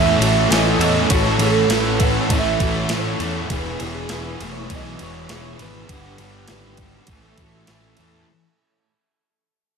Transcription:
Already playing: E2 A2 E3 A3 C#4 A4 C#5 E5 F#5 G#5
0.19 A1 A2 E3 A3 C#4 F#4 A4, ride
0.49 A1 A2 E3 A3 C#4 G#5, snare, ride
0.53 A4 D#5
0.78 E2 A2 E3 A4, ride
0.83 E3 A3 C#4
1.10 A1 A2 E3 A3 C#4 F#4 A4 C#5, kick, ride
1.39 A1 A2 E3 C#4 A4 C#5, ride
1.44 A3
1.69 A1 A2 E3 A3 C#4 B4, snare, ride
1.73 A4
1.98 A2 E3 C#4 A4, kick, ride
2.02 A3 F#5
2.30 A1 A2 E3 A3 C#4 A4 E5 G#5, kick, ride
2.58 A1 A2 E3 C#4 F#4 A4, kick, ride
2.62 A3
2.88 A1 A2 E3 A3 C#5 G#5, snare, ride
2.93 C#4 A4
3.19 E2 A2 E3 C#4 A4, ride
3.23 E3 A3
3.50 E1 E2 B2 E3 B3 E4 G#4 B4 G#5 D#6, kick, ride
3.78 E1 E2 B2 B3 E4 G#4 C#5, ride
3.83 E3
4.08 E1 E2 B2 E3, snare, ride
4.12 B3 E4 G#4 B4
4.37 E2 B2 E3, ride
4.41 E1 E3 A3 B3 E4 G#4
4.52 C#5
4.70 B1 E2 B2 E3 B3 E4 G#4 D#5, kick, ride
4.74 G#4
4.98 E1 E2 B2 E4 F#4 G#4, ride
5.03 E3 B3 C#5
5.29 E1 E2 B2 E3 B3 E4 G#4 C#5, snare, ride
5.34 G#4
5.58 G#1 E2 B2 E4 G#4 A4 B4, ride
5.63 E3 B3
5.88 G1 G2 D3 G3 B3 D4 G4 F#5, kick, ride
6.18 G1 G2 D3 G3 B3 D4 G4 C#5, ride
6.48 G#1 G2 D3 G3 B3 D4 B4, snare, ride
6.52 G4
6.77 G2 D3 D4 G4 A4, kick, ride
6.82 G3 B3
7.06 A1 A2 E3 A3 A4 E5 G#5 C#6, kick, ride
7.11 C#4 A4
7.37 A1 A2 E3 A3 C#4 F#4 A4, kick, ride
7.67 A1 A2 E3 A3 C#4 A4 G#5, snare, ride
7.97 E2 A2 E3 A3 C#4 A4, ride

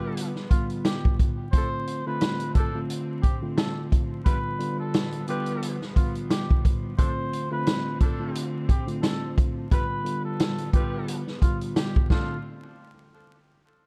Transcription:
Already playing: D2 D3 F3 G3 B3 F4 G4 B4
0.17 closed hi-hat
0.36 snare
0.51 D3 G3 B3 F4, kick, closed hi-hat
0.70 closed hi-hat
0.85 G4, cross-stick, snare, closed hi-hat
1.05 kick
1.19 kick, closed hi-hat
1.52 D2 D3 F3 A3 C4 D4 F4 A4 C5, kick, closed hi-hat
1.87 closed hi-hat
2.06 D3 A3 C4 F4 B4
2.21 cross-stick, snare, closed hi-hat
2.40 closed hi-hat
2.54 F3 D4 A4, kick, closed hi-hat
2.74 D3 A3 C4 F4
2.90 closed hi-hat
3.23 G4, kick, closed hi-hat
3.42 D3 A3 C4 F4
3.57 A4, cross-stick, snare, closed hi-hat
3.92 kick, closed hi-hat
4.25 D3 G3 B3 F4 B4, kick, closed hi-hat
4.59 D3 G3 B3 F4, closed hi-hat
4.80 A4
4.94 cross-stick, snare, closed hi-hat
5.12 closed hi-hat
5.28 D3 G3 B3 F4 G4 B4, closed hi-hat
5.46 closed hi-hat
5.62 closed hi-hat
5.81 snare
5.96 D3 G3 B3 F4, kick, closed hi-hat
6.15 closed hi-hat
6.30 G4, cross-stick, snare, closed hi-hat
6.50 kick
6.65 kick, closed hi-hat
6.98 D3 F3 A3 C4 D4 F4 A4 C5, kick, closed hi-hat
7.33 closed hi-hat
7.51 D3 A3 C4 F4 B4
7.67 cross-stick, snare, closed hi-hat
8.00 F3 D4 A4, kick, closed hi-hat
8.19 D3 A3 C4 F4
8.35 closed hi-hat
8.69 G4, kick, closed hi-hat
8.87 D3 A3 C4 F4, closed hi-hat
9.02 A4, cross-stick, snare, closed hi-hat
9.38 kick, closed hi-hat
9.71 D3 G3 B3 F4 B4, kick, closed hi-hat
10.04 D3 G3 B3 F4, closed hi-hat
10.24 A4
10.40 cross-stick, snare, closed hi-hat
10.58 closed hi-hat
10.73 D3 G3 B3 F4 G4 B4, kick, closed hi-hat
11.08 closed hi-hat
11.27 snare
11.42 D3 G3 B3 F4, kick, closed hi-hat
11.61 closed hi-hat
11.76 G4, cross-stick, snare, closed hi-hat
11.96 kick
12.10 D3 F3 A3 C4 D4 F4 A4, kick, snare

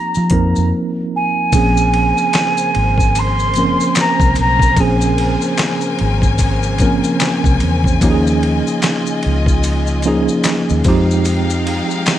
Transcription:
Already playing: F3 A#3 C4 D#4 G4 A#5
0.15 F3, maracas
0.30 F2 F3 A#3 C4 D#4 A#4, kick, closed hi-hat
0.56 F2, maracas
1.16 G#5
1.52 A#1 C#3 F3 A#3 C4 C#4 G#4 A#4 C5 G#5, kick, ride, maracas
1.77 maracas
1.94 ride
2.17 maracas
2.33 finger snap, snare, clap, ride, maracas
2.57 maracas
2.75 G#1, ride
2.98 kick, maracas
3.15 C6, ride, maracas
3.39 maracas
3.54 F3 A#3, ride, maracas
3.58 C4 C#4 A#4
3.80 maracas
3.95 finger snap, snare, clap, ride, maracas
4.00 A#5
4.20 C2, kick, maracas
4.35 B1, ride, maracas
4.40 A#5
4.60 kick, maracas
4.77 A#1 F3 A#3 C4 C#4 G#4 G#5, kick, ride, maracas
5.01 maracas
5.18 ride
5.41 maracas
5.57 finger snap, snare, clap, ride, maracas
5.81 maracas
5.99 G#1, ride
6.22 kick, maracas
6.38 kick, ride, maracas
6.63 maracas
6.78 F3 A#3 C4 C#4 A#4, kick, ride, maracas
7.04 maracas
7.20 finger snap, snare, clap, ride, maracas
7.44 C2, kick, maracas
7.60 E2, ride, maracas
7.84 kick, maracas
8.01 D#2 F3 A#3 C#4 D#4 F4 G4 D#5, kick, ride, maracas
8.11 G#4
8.27 maracas
8.43 ride
8.67 maracas
8.82 finger snap, snare, clap, ride, maracas
9.06 maracas
9.23 C#2, ride
9.46 kick, maracas
9.63 ride, maracas
9.87 maracas
10.02 F3 A#3 C#4, ride, maracas
10.07 D#4 G#4
10.28 maracas
10.44 finger snap, snare, clap, ride, maracas
10.69 D#2, maracas
10.83 F2 F3 G#3 D#4 F5 G5, kick, ride, maracas
10.87 C4 D#4 G4
11.11 maracas
11.25 ride, maracas
11.50 maracas
11.67 ride
11.90 maracas
12.06 finger snap, snare, clap, ride, maracas

